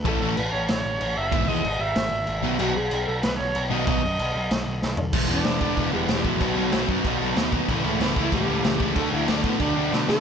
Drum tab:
CC |x-x-x-x-|x-x-x-x-|x-x-x-x-|x-x-x---|
SD |----o---|----o---|----o---|----o-o-|
FT |--------|--------|--------|-------o|
BD |o-------|o-------|--------|o-------|

CC |x-x-x-x-|x-x-x-x-|x-x-x-x-|x-x-x---|
SD |--o---o-|--o---o-|--o---o-|--o---oo|
FT |--------|--------|--------|--------|
BD |o--oo--o|o--oo--o|o--oo--o|o--oo---|